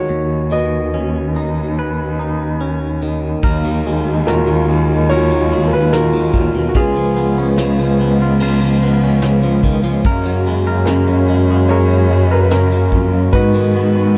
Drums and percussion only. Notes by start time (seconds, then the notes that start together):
3.43 kick, ride
3.86 ride
4.27 snare, ride
4.69 ride
5.10 ride
5.51 ride
5.92 snare, ride
6.34 kick, ride
6.75 kick, ride
7.17 ride
7.57 snare, ride
7.99 ride
8.40 ride
8.81 ride
9.21 snare, ride
9.63 kick, ride
10.05 kick, ride
10.45 ride
10.86 snare, ride
11.27 ride
11.68 ride
12.09 ride
12.50 snare, ride
12.92 kick, ride
13.33 kick, ride
13.75 ride